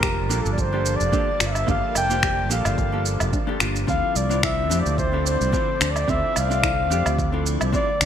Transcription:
Already playing: fretless electric bass F1, analog synth pad F3 G3 A#3 D4 A5, hollow-body jazz guitar A#3 D4 F4 G4 C5, flugelhorn A#4
0.03 synth arpeggio sound G4, finger snap, kick, shaker
0.29 fretless electric bass A#1, hollow-body jazz guitar A#3 D4 F4 G4 A4, shaker
0.42 fretless electric bass G1, flugelhorn A4, shaker
0.53 flugelhorn D5
0.58 flugelhorn C5, kick, shaker
0.72 hollow-body jazz guitar A#3 D4 F4 G4 A4
0.86 shaker
0.97 fretless electric bass F1, flugelhorn D5, shaker
1.12 hollow-body jazz guitar A#3 D4 F4 G4 A4, synth arpeggio sound D4, kick, shaker
1.40 fretless electric bass G1, synth arpeggio sound F4, finger snap, shaker
1.47 flugelhorn F5
1.52 flugelhorn E5, low woodblock, shaker
1.67 fretless electric bass G1, hollow-body jazz guitar A#3 D4 F4 G4 A4, synth arpeggio sound D4, flugelhorn F5, kick, shaker
1.95 fretless electric bass F1, flugelhorn G5, low woodblock, shaker
2.09 hollow-body jazz guitar A#3 D4 F4 G4 C5, shaker
2.23 synth arpeggio sound G4, finger snap, kick, shaker
2.49 fretless electric bass A#1, hollow-body jazz guitar A#3 D4 F4 G4 A4, flugelhorn F5, shaker
2.65 fretless electric bass G1, low woodblock, shaker
2.78 kick, shaker
2.92 hollow-body jazz guitar A#3 D4 F4 G4 A4
3.06 shaker
3.20 fretless electric bass F1, low woodblock, shaker
3.33 synth arpeggio sound D4, kick, shaker
3.47 hollow-body jazz guitar A#3 D4 F4 G4 A4
3.60 fretless electric bass G1, hollow-body jazz guitar A#3 D4 F4 G4 A#4, synth arpeggio sound F4, finger snap, shaker
3.76 shaker
3.87 fretless electric bass D2, analog synth pad D3 A3 C4 D5, hollow-body jazz guitar C4 D4 E4 F4 A4, synth arpeggio sound C4, flugelhorn F5, kick, shaker
4.16 fretless electric bass C2, flugelhorn D5, shaker
4.29 hollow-body jazz guitar C4 D4 E4 F4 D5, shaker
4.43 synth arpeggio sound E4, flugelhorn E5, finger snap, kick, shaker
4.70 fretless electric bass F2, hollow-body jazz guitar C4 D4 E4 F4 G4, shaker
4.81 flugelhorn D5
4.86 fretless electric bass D2, shaker
4.98 flugelhorn C5, kick, shaker
5.12 hollow-body jazz guitar C4 D4 E4 F4 A4
5.26 flugelhorn C5, shaker
5.41 fretless electric bass C2, shaker
5.52 hollow-body jazz guitar C4 D4 E4 F4 A4, synth arpeggio sound C4, kick, shaker
5.81 fretless electric bass D2, synth arpeggio sound D4, finger snap, shaker
5.92 flugelhorn D5
5.96 low woodblock, shaker
6.08 fretless electric bass D2, hollow-body jazz guitar C4 D4 E4 F4 A4, synth arpeggio sound C4, flugelhorn E5, kick, shaker
6.36 fretless electric bass C2, flugelhorn F5, low woodblock, shaker
6.50 hollow-body jazz guitar C4 D4 F4 D5, shaker
6.63 synth arpeggio sound E4, finger snap, kick, shaker
6.90 fretless electric bass F2, hollow-body jazz guitar C4 D4 F4 G4, shaker
7.06 fretless electric bass D2, low woodblock, shaker
7.18 kick, shaker
7.32 hollow-body jazz guitar C4 D4 E4 F4 A4
7.46 shaker
7.61 fretless electric bass C2, low woodblock, shaker
7.72 hollow-body jazz guitar C4 D4 E4 F4 A4, synth arpeggio sound C4, flugelhorn D5, kick, shaker
8.01 fretless electric bass D2, synth arpeggio sound D4, finger snap, shaker

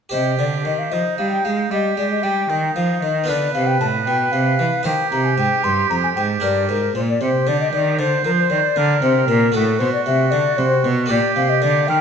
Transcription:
0.09 harpsichord C3 G4 C5, cello C3, oboe G4, flute D#5
0.39 harpsichord D3, cello D3, flute D5
0.65 harpsichord D#3, cello D#3, flute D#5
0.79 flute F5
0.91 harpsichord F3, cello F3, oboe D#4, flute D#5
1.18 cello G3, harpsichord G3, flute F5
1.32 flute G5
1.45 cello G#3, harpsichord G#3, flute F5
1.71 cello G3, harpsichord G3, oboe G4, flute D#5
1.97 cello G#3, harpsichord G#3, flute D5
2.11 flute D#5
2.23 cello G3, harpsichord G3, flute G5
2.49 cello D#3, harpsichord D#3, oboe D#4
2.75 cello F3, harpsichord F3, flute F5
3.02 cello D#3, harpsichord D#3, flute D#5
3.24 harpsichord B3 F4 B4
3.28 cello D3, harpsichord D3, oboe B4, flute D5
3.54 cello C3, harpsichord C3, flute F5
3.67 flute G5
3.81 cello A2, harpsichord A2, flute A5
4.06 cello B2, harpsichord B2, flute G5
4.32 cello C3, harpsichord C3, flute F5
4.59 cello E3, harpsichord E3
4.83 cello D#3, harpsichord D#3 D#4 C5, oboe G4, flute G5
5.11 cello C3, harpsichord C3, flute A#5
5.25 flute G#5
5.38 harpsichord G#2, cello G#2, flute G5
5.64 cello G2, harpsichord G2, flute C6
5.90 cello F2, harpsichord F2, flute A#5
6.03 flute G#5
6.16 cello G#2, harpsichord G#2, flute G5
6.40 cello G2, harpsichord G2 D4 A#4, flute D5
6.68 cello G#2, harpsichord G#2, flute A#4
6.95 cello A#2, harpsichord A#2, flute C5
7.08 flute D5
7.21 cello C3, harpsichord C3, oboe G4, flute C5
7.47 harpsichord D3, cello D3, flute D5
7.60 flute D#5
7.73 cello D#3, harpsichord D#3, flute D5
7.99 harpsichord D3, cello D3, flute C5, oboe C5
8.25 harpsichord F3, cello F3, flute A#4
8.38 flute C5
8.50 harpsichord D#3, cello D#3, flute D5
8.76 harpsichord D3, cello D3, oboe A#4
9.02 harpsichord C3, cello C3, flute C5
9.28 harpsichord A#2, cello A#2, flute A#4
9.52 harpsichord A2 F#4 A4, cello A2, flute A4
9.56 oboe F#4
9.79 cello B2, harpsichord B2, flute C5
9.93 flute D5
10.06 harpsichord C3, cello C3, flute E5
10.31 harpsichord D3, cello D3, flute D5
10.58 cello C3, harpsichord C3, flute C5
10.84 cello B2, harpsichord B2
11.06 cello A#2, harpsichord A#3 G4 D5, flute D5
11.10 harpsichord A#2, oboe G4
11.35 cello C3, harpsichord C3, flute F5
11.50 flute D#5
11.62 harpsichord D3, cello D3, flute D5
11.88 harpsichord D#3, cello D#3, oboe A#4, flute G5

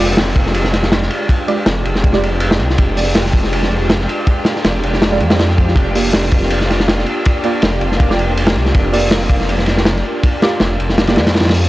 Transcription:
Already playing: detuned saw bass F1, string machine G#3 D4 F4 G4, downlifter
0.00 synth stab G#3 F4 G4 D5
0.17 detuned saw bass F1, snare, ride
0.27 snare
0.36 detuned saw bass F1, kick, ride
0.46 snare
0.54 ride
0.64 snare
0.73 snare, ride
0.83 snare
0.92 snare, ride
1.02 snare
1.11 ride
1.29 kick, ride
1.48 synth stab G#3 F4 G4 D5, ride
1.66 detuned saw bass F1, snare, ride
1.85 detuned saw bass F1, ride
1.95 snare
2.04 kick, ride
2.13 synth stab G#3 F4 G4 D5, snare
2.23 ride
2.40 ride
2.51 snare
2.59 detuned saw bass C2, snare, ride
2.70 snare
2.78 detuned saw bass F1, kick, ride
2.97 synth stab G#3 F4 G4 D5, open hi-hat
3.15 detuned saw bass F1, snare, ride
3.26 snare
3.33 detuned saw bass F1, kick, ride
3.44 snare
3.53 ride
3.63 snare
3.90 snare, ride
4.00 snare
4.09 ride
4.27 kick, ride
4.45 snare, ride
4.56 snare
4.65 detuned saw bass F1, snare, ride
4.83 detuned saw bass F1, ride
4.93 snare
5.02 snare, ride
5.12 synth stab G#3 F4 G4 D5, snare
5.20 detuned saw bass F2, ride
5.30 synth stab G#3 F4 G4 D5, snare, ride
5.39 snare, ride
5.50 snare
5.58 kick, ride
5.68 snare
5.76 detuned saw bass F1, string machine A#3, kick, ride
5.95 synth stab A#3 F4 G4 D5, open hi-hat
6.13 detuned saw bass F1, snare, ride
6.24 snare
6.31 detuned saw bass F1, kick, ride
6.42 snare
6.50 ride
6.61 snare
6.70 snare, ride
6.80 snare
6.88 snare, ride
6.98 snare
7.06 ride
7.25 kick, ride
7.44 synth stab A#3 F4 G4 D5, ride
7.62 detuned saw bass F1, snare, ride
7.81 detuned saw bass F1, ride
7.92 snare
8.00 kick, ride
8.10 synth stab A#3 F4 G4 D5, snare
8.19 ride
8.37 ride
8.47 snare
8.56 detuned saw bass C2, snare, ride
8.66 snare
8.75 detuned saw bass F1, kick, ride
8.93 synth stab A#3 F4 G4 D5, open hi-hat
9.11 detuned saw bass F1, snare, ride
9.21 snare
9.30 detuned saw bass F1, kick, ride
9.41 snare
9.49 ride
9.59 snare
9.66 snare, ride
9.77 snare
9.85 snare, ride
9.96 snare
10.23 kick, ride
10.42 synth stab A#3 F4 G4 D5, snare, ride
10.60 detuned saw bass F1, snare, ride
10.80 detuned saw bass F1, ride
10.89 snare
10.98 snare, ride
11.07 synth stab A#3 F4 G4 D5, snare, ride
11.16 detuned saw bass F2, snare, ride
11.27 snare, ride
11.34 snare, ride
11.40 snare, ride
11.45 snare, ride
11.49 snare, ride
11.54 open hi-hat

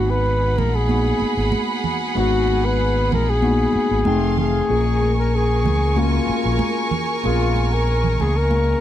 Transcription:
Already playing: fingered electric bass G#1, tine electric piano G#3 B3 D#4 F#4, flugelhorn F#4, violin section G#4 F#5 B5
0.10 flugelhorn B4
0.26 muted conga
0.58 fingered electric bass A#1, flugelhorn A#4, muted conga, high conga, low conga
0.75 flugelhorn G#4
0.88 tine electric piano A#3 B3 D#4 F#4, muted conga, high conga
1.20 muted fingered electric bass stroke, muted conga, high conga
1.37 fingered electric bass G#1
1.52 muted conga, high conga
1.84 low conga
2.15 fingered electric bass G#1, tine electric piano G#3 B3 D#4 F#4, flugelhorn F#4, muted conga
2.48 muted conga, high conga
2.66 flugelhorn B4
2.80 muted conga
3.12 fingered electric bass A#1, flugelhorn A#4, muted conga, high conga, low conga
3.29 flugelhorn G#4
3.42 tine electric piano A#3 B3 D#4 F#4, muted conga, high conga
3.73 muted fingered electric bass stroke, muted conga, high conga
3.91 fingered electric bass G#1
4.05 fingered electric bass F1, tine electric piano G#3 C4 D#4 G5, violin section A3 F5 C6, muted conga, high conga
4.11 tine electric piano A3
4.38 flugelhorn G#4, low conga
4.69 fingered electric bass A#1, tine electric piano A#3 C#4 F4 G#4, violin section A#4 G#5 C#6
5.01 high conga
5.19 flugelhorn A#4
5.36 flugelhorn G#4
5.65 fingered electric bass C#2, high conga, low conga
5.96 tine electric piano A#3 C#4 F4 F#4, flugelhorn F4, muted conga, high conga
6.05 tine electric piano G#4
6.27 muted fingered electric bass stroke, high conga
6.45 fingered electric bass A#1
6.59 muted conga, high conga
6.91 muted conga, low conga
7.23 fingered electric bass A#1, tine electric piano A#3 B3 F4 G#4, flugelhorn F4, muted conga
7.30 tine electric piano C#4
7.56 muted conga, high conga
7.74 flugelhorn A#4
7.87 muted conga
8.04 low conga
8.20 fingered electric bass C#2, flugelhorn G#4, high conga, low conga
8.37 flugelhorn A#4
8.50 tine electric piano A#3 C#4 F4 G#4, muted conga, high conga

